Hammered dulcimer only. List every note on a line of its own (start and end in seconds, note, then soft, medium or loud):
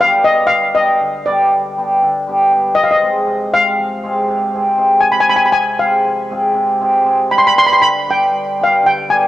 0.00 0.99 D3 medium
0.00 0.25 G3 medium
0.00 0.19 B3 medium
0.00 0.19 D4 medium
0.00 0.19 G4 medium
0.26 0.48 G3 soft
0.26 0.42 B3 soft
0.26 0.43 D4 soft
0.49 0.73 G3 medium
0.74 1.05 G3 medium
0.74 0.92 B3 medium
0.74 0.92 D4 medium
0.74 0.93 G4 medium
1.00 2.01 D3 medium
1.27 1.50 G3 medium
1.27 1.44 B3 medium
1.27 1.44 D4 medium
1.27 1.44 G4 medium
1.51 1.76 G3 medium
1.78 2.05 G3 medium
1.78 1.95 B3 medium
1.78 1.95 D4 medium
1.78 1.95 G4 medium
2.02 2.81 D3 medium
2.27 2.49 G3 medium
2.27 2.44 B3 medium
2.27 2.44 D4 medium
2.27 2.44 G4 medium
2.50 2.81 G3 medium
2.50 2.67 B3 soft
2.50 2.67 D4 medium
2.50 2.68 G4 medium
2.74 3.31 F3 medium
3.01 3.52 G#3 medium
3.01 3.18 C4 medium
3.01 3.18 F4 medium
3.01 3.19 G#4 medium
3.26 4.27 C3 medium
3.53 4.02 G#3 medium
3.53 3.70 C4 medium
3.53 3.70 F4 medium
3.53 3.70 G#4 medium
3.78 4.31 F3 medium
4.03 4.52 G#3 medium
4.03 4.20 C4 medium
4.03 4.21 F4 medium
4.03 4.21 G#4 medium
4.28 5.51 C3 medium
4.53 4.76 G#3 medium
4.53 4.70 C4 medium
4.53 4.70 F4 medium
4.53 4.71 G#4 medium
4.77 5.27 G#3 medium
4.77 4.94 C4 medium
4.77 4.94 F4 medium
4.77 4.94 G#4 medium
5.01 5.57 F3 medium
5.28 5.77 G#3 medium
5.28 5.45 C4 medium
5.28 5.45 F4 medium
5.28 5.46 G#4 medium
5.52 6.53 C3 medium
5.79 6.29 G#3 medium
5.79 5.96 C4 medium
5.79 5.97 F4 soft
5.79 5.97 G#4 medium
6.05 6.58 F3 medium
6.30 6.79 G#3 medium
6.30 6.48 C4 medium
6.30 6.48 F4 medium
6.30 6.48 G#4 medium
6.54 7.34 C3 medium
6.80 7.03 G#3 medium
6.80 6.97 C4 medium
6.80 6.97 F4 medium
6.80 6.98 G#4 medium
7.04 7.34 G#3 medium
7.04 7.21 C4 medium
7.04 7.21 F4 medium
7.04 7.22 G#4 medium
7.29 7.53 G3 medium
7.54 7.84 G3 medium
7.54 7.71 B3 medium
7.54 7.72 D4 soft
7.54 7.72 G4 medium
7.80 8.82 D3 medium
8.07 8.30 G3 medium
8.07 8.24 B3 soft
8.07 8.24 D4 medium
8.07 8.24 G4 medium
8.31 8.58 G3 medium
8.59 8.85 G3 medium
8.59 8.75 B3 medium
8.59 8.76 D4 medium
8.59 8.76 G4 medium
8.83 9.28 D3 medium
9.08 9.28 G3 medium
9.08 9.25 B3 medium
9.08 9.25 D4 medium
9.08 9.25 G4 medium